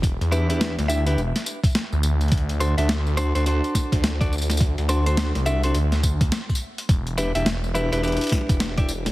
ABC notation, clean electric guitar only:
X:1
M:4/4
L:1/16
Q:"Swing 16ths" 1/4=105
K:Em
V:1 name="Clean electric guitar"
z2 [DEGB] [DEGB]2 z [DEGe] [DEGB] z8 | z2 [DFAc] [DFAe] z2 [DFAc] [DFAc] [DFAc]4- [DFAc] [DFAd] z2 | z2 [DFAc] [DFAc]2 z [DFAe] [DFAc] z8 | z2 [DEGB] [DEGe] z2 [DEGB] [DEGB] [DEGB]4- [DEGB] [DEGd] z2 |]